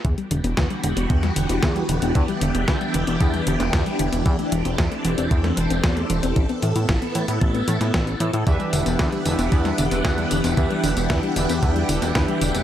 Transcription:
0.04 E2 D3 E3 B3 D4 F#4 G4, kick, closed hi-hat
0.18 G3, closed hi-hat
0.31 E1 D3, closed hi-hat
0.44 E1 B3, closed hi-hat
0.57 E2 D3, kick, snare, closed hi-hat
0.70 G3, closed hi-hat
0.83 E1 D3, closed hi-hat
0.97 E1 B3, closed hi-hat
1.10 E2 D3, kick, closed hi-hat
1.23 G3, snare, closed hi-hat
1.36 E1 D3, closed hi-hat
1.49 E1 B3, closed hi-hat
1.62 E2 D3, kick, snare, closed hi-hat
1.76 G3, closed hi-hat
1.89 E1 D3, closed hi-hat
2.02 E1 B3, closed hi-hat
2.15 E2 D3 E4, kick, closed hi-hat
2.28 G3, closed hi-hat
2.41 E1 D3, closed hi-hat
2.55 E1 B3, closed hi-hat
2.68 E2 D3, kick, snare, closed hi-hat
2.81 G3, closed hi-hat
2.94 E1 D3, closed hi-hat
3.07 E1 B3, closed hi-hat
3.21 E2 D3, kick, closed hi-hat
3.34 G3, closed hi-hat
3.47 E1 D3, closed hi-hat
3.60 E1 B3, snare, closed hi-hat
3.73 E2 D3, kick, snare, closed hi-hat
3.86 G3, closed hi-hat
3.99 E1 D3, closed hi-hat
4.13 E1 B3, closed hi-hat
4.25 E2 E3 C4 A4, kick, closed hi-hat
4.39 A3, closed hi-hat
4.52 E1 E3, closed hi-hat
4.65 E1 C4, closed hi-hat
4.78 E2 E3, kick, snare, closed hi-hat
4.92 A3, closed hi-hat
5.05 E1 E3, closed hi-hat
5.18 E1 C4, closed hi-hat
5.31 E2 E3, kick, closed hi-hat
5.44 A3, snare, closed hi-hat
5.57 E1 E3, closed hi-hat
5.70 E1 C4, closed hi-hat
5.84 E2 E3, kick, snare, closed hi-hat
5.97 A3, closed hi-hat
6.10 E1 E3, closed hi-hat
6.23 E1 C4, closed hi-hat
6.36 A1 E3 B3 E4, kick, closed hi-hat
6.49 B3, closed hi-hat
6.62 A2 E3, closed hi-hat
6.76 A2 E4, closed hi-hat
6.89 A1 E3, kick, snare, closed hi-hat
7.02 B3, closed hi-hat
7.15 A2 E3, closed hi-hat
7.28 A2 E4, closed hi-hat
7.41 A1 E3, kick, closed hi-hat
7.54 B3, closed hi-hat
7.68 A2 E3, closed hi-hat
7.81 A2 E4, snare, closed hi-hat
7.94 A1 E3, kick, snare, closed hi-hat
8.07 B3, closed hi-hat
8.20 A2 E3, closed hi-hat
8.33 A2 E4, closed hi-hat
8.46 E2 D3 E3 B3 D4 G4 B4 E5 F#5, kick, closed hi-hat, tambourine
8.60 G3, closed hi-hat
8.73 E1 D3, closed hi-hat, tambourine
8.86 E1 B3, closed hi-hat, tambourine
8.99 E2 D3, kick, snare, closed hi-hat, tambourine
9.12 G3, closed hi-hat
9.26 E1 D3 E3 D4 G4 B4 E5, closed hi-hat, tambourine
9.39 E1 B3, closed hi-hat, tambourine
9.52 E2 D3, kick, closed hi-hat, tambourine
9.65 G3, snare, closed hi-hat
9.78 E1 D3, closed hi-hat, tambourine
9.91 E1 B3, closed hi-hat, tambourine
10.05 E2 D3, kick, snare, closed hi-hat, tambourine
10.18 G3, closed hi-hat
10.31 E1 D3, closed hi-hat, tambourine
10.44 E1 B3, closed hi-hat, tambourine
10.57 E2 D3 E3 D4 G4 B4 E5, kick, closed hi-hat, tambourine
10.70 G3, closed hi-hat
10.84 E1 D3, closed hi-hat, tambourine
10.97 E1 B3, closed hi-hat, tambourine
11.10 E2 D3, kick, snare, closed hi-hat, tambourine
11.23 G3, closed hi-hat
11.36 E1 D3 E3 D4 G4 B4 E5, closed hi-hat, tambourine
11.49 E1 B3, closed hi-hat, tambourine
11.63 E2 D3, kick, closed hi-hat, tambourine
11.76 G3, closed hi-hat
11.89 E1 D3, closed hi-hat, tambourine
12.02 E1 B3, snare, closed hi-hat, tambourine
12.15 E2 D3, kick, snare, closed hi-hat, tambourine
12.28 G3, closed hi-hat
12.41 E1 D3, closed hi-hat, tambourine
12.55 E1 B3, closed hi-hat, tambourine

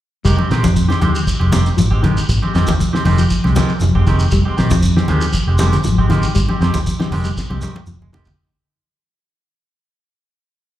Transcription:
0.25 F1 D#3 G3 G#3 G4, muted clean electric guitar stroke, kick, closed hi-hat, shekere
0.38 G#3 C4 G4, high conga
0.50 A#1 D#3 G#3 C4 G4, snare, closed hi-hat, shekere
0.63 F2 F3, kick, closed hi-hat, high conga, shekere
0.76 kick, closed hi-hat, shekere
0.88 D#3 G#3 C4 G4, snare, high conga
1.01 D#2 G#3 C4 G4, closed hi-hat, high conga, low conga, shekere
1.14 muted clean electric guitar stroke, closed hi-hat, shekere
1.27 kick, closed hi-hat, shekere
1.40 F1 G#3 C4 G4, high conga
1.52 D#3 G3 C4 G4, snare, closed hi-hat, high conga, shekere
1.66 closed hi-hat, shekere
1.77 G#1 F3, closed hi-hat, high conga, shekere
1.91 G#3 C4 G4, kick
2.03 D#3 G#3 G4, kick, closed hi-hat, high conga, low conga, shekere
2.17 snare, shekere
2.29 G#1, muted clean electric guitar stroke, kick, closed hi-hat, shekere
2.42 G#3 C4 G4, high conga
2.54 F2 D#3 G#3 C4 G4, snare, closed hi-hat, shekere
2.67 D#2 F3, kick, snare, closed hi-hat, high conga, shekere
2.80 kick, closed hi-hat, shekere
2.93 D#3 G#3 C4 G4, muted fingered electric bass stroke, snare
3.05 F1 D#3 G#3 C4 G4, open hi-hat, high conga, low conga, shekere
3.18 F3, closed hi-hat, shekere
3.30 kick, closed hi-hat, shekere
3.44 C2 G#3 C4 G4, snare, high conga
3.56 D#3 F3 G#3 C4 G4, snare, closed hi-hat, high conga, shekere
3.69 shekere
3.80 F1 F3, closed hi-hat, high conga, shekere
3.95 F1 G#3 C4 G4, kick
4.07 F1 D#3 G#3 C4 G4, kick, closed hi-hat, low conga, shekere
4.19 closed hi-hat, shekere
4.31 F1 G3, kick, snare, closed hi-hat, shekere
4.45 G#3 C4 G4
4.57 A#1 D#3 C4 G4, muted clean electric guitar stroke, snare, closed hi-hat, shekere
4.70 F2 F3, kick, closed hi-hat, high conga, shekere
4.82 kick, closed hi-hat, shekere
4.97 D#3 G#3 C4 G4, snare
5.08 D#2 D#3 G#3 C4 G4, closed hi-hat, high conga, low conga, shekere
5.21 F3, closed hi-hat, shekere
5.33 kick, closed hi-hat, shekere
5.47 F1 G#3 C4 G4
5.58 D#3 G3 G#3 C4 G4, snare, closed hi-hat, high conga, shekere
5.72 snare, closed hi-hat, low conga, shekere
5.84 G#1 F3, closed hi-hat, high conga, shekere
5.98 G#3 C4 G4, kick
6.09 D#3 G#3 C4 G4, kick, closed hi-hat, high conga, low conga, shekere
6.23 shekere
6.35 G#1 G3, kick, snare, closed hi-hat, shekere
6.49 G#3 C4 G4, high conga
6.61 F2 D#3 G#3 C4 G4, snare, closed hi-hat, shekere
6.74 D#2 F3, kick, snare, closed hi-hat, high conga, shekere
6.86 kick, closed hi-hat, shekere
6.99 D#3 G#3 C4 G4, muted fingered electric bass stroke, snare, high conga
7.11 F1 D#3 G#3 C4 G4, open hi-hat, high conga, low conga, shekere
7.24 G3, closed hi-hat, shekere
7.37 kick, snare, shekere
7.50 C2 G#3 C4 G4, high tom, high conga
7.61 D#3 G3 G#3 C4 G4, high conga, shekere
7.75 mid tom, high conga, shekere
7.86 F1 F3, mid tom, shekere
8.01 F1 G#3, low conga
8.13 D#3 G#3 C4 G4, floor tom, low conga, shekere
8.25 kick, low conga, shekere

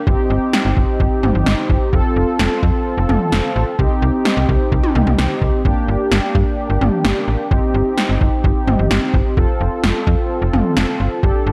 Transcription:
0.07 G1 C4 D#4 G4, kick
0.30 G1
0.53 snare
0.65 G1
0.77 G1, kick
1.00 G1, kick
1.23 G1, mid tom
1.35 G1
1.46 G1, snare
1.70 G1, kick
1.93 F1 C4 F4 A4, kick
2.16 F1
2.39 F1, snare
2.63 F2, kick
2.98 F1
3.09 F1, mid tom
3.32 F1, snare
3.56 A1
3.79 C2 C4 D#4 G4, kick
4.02 C2
4.25 snare
4.37 C2
4.49 C2, kick
4.72 C2, kick
4.83 mid tom
4.95 C2, mid tom
5.07 C2, mid tom
5.19 C2, snare
5.42 C2, kick
5.65 G1 A#3 D4 G4, kick
5.88 G1
6.12 G1, snare
6.35 G2, kick
6.70 G1
6.81 G1, mid tom
7.05 G1, snare
7.28 A1
7.51 G1 C4 D#4 G4, kick
7.74 G1
7.98 snare
8.09 G1
8.21 G1, kick
8.44 G1, kick
8.67 G1, mid tom
8.79 G1
8.91 G1, snare
9.14 G1, kick
9.37 F1 C4 F4 A4, kick
9.61 F1
9.84 F1, snare
10.07 F2, kick
10.42 F1
10.53 F1, mid tom
10.77 F1, snare
11.00 G1
11.23 G1 D4 G4 A4, kick
11.47 G1

